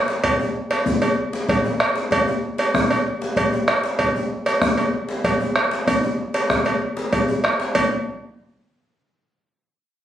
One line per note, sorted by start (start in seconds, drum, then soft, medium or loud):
0.08 djembe slap medium
0.23 bombo low loud
0.23 cowbell medium
0.23 djembe slap soft
0.23 djembe bass medium
0.39 djembe tone medium
0.71 cowbell medium
0.71 djembe slap medium
0.86 bombo low loud
0.86 djembe bass medium
1.01 bombo rim soft
1.01 cowbell soft
1.01 djembe slap soft
1.01 djembe tone medium
1.33 djembe slap medium
1.49 bombo low loud
1.49 cowbell medium
1.49 djembe slap soft
1.49 djembe bass medium
1.65 djembe tone medium
1.80 bombo rim loud
1.80 cowbell medium
1.95 djembe slap medium
2.11 bombo low loud
2.11 cowbell medium
2.11 djembe slap soft
2.11 djembe bass medium
2.27 djembe tone medium
2.43 djembe slap soft
2.58 cowbell medium
2.58 djembe slap medium
2.74 bombo rim medium
2.74 bombo low medium
2.74 djembe bass medium
2.90 bombo rim soft
2.90 cowbell medium
2.90 djembe tone medium
3.22 djembe slap medium
3.36 bombo low medium
3.36 cowbell medium
3.36 djembe slap soft
3.36 djembe bass medium
3.52 djembe tone medium
3.68 bombo rim loud
3.68 cowbell medium
3.84 djembe slap medium
3.99 bombo low loud
3.99 cowbell medium
3.99 djembe slap soft
3.99 djembe bass medium
4.15 djembe tone medium
4.31 djembe slap soft
4.46 cowbell medium
4.46 djembe slap medium
4.62 bombo rim loud
4.62 bombo low loud
4.62 djembe bass medium
4.77 cowbell soft
4.77 djembe slap soft
4.77 djembe tone medium
5.09 djembe slap medium
5.24 bombo low medium
5.24 cowbell medium
5.24 djembe slap soft
5.24 djembe bass medium
5.40 djembe tone medium
5.56 bombo rim loud
5.56 cowbell medium
5.71 djembe slap medium
5.87 bombo rim soft
5.87 bombo low loud
5.87 cowbell medium
5.87 djembe bass medium
6.03 djembe tone medium
6.34 cowbell medium
6.34 djembe slap medium
6.50 bombo rim loud
6.50 bombo low medium
6.50 djembe slap soft
6.50 djembe bass medium
6.65 bombo rim soft
6.65 cowbell soft
6.65 djembe slap soft
6.65 djembe tone medium
6.97 djembe slap medium
7.12 bombo low medium
7.12 cowbell medium
7.12 djembe slap soft
7.12 djembe bass medium
7.28 bombo rim soft
7.28 djembe slap soft
7.28 djembe tone medium
7.44 bombo rim loud
7.44 cowbell soft
7.60 djembe slap medium
7.75 bombo low medium
7.75 cowbell medium
7.75 djembe bass medium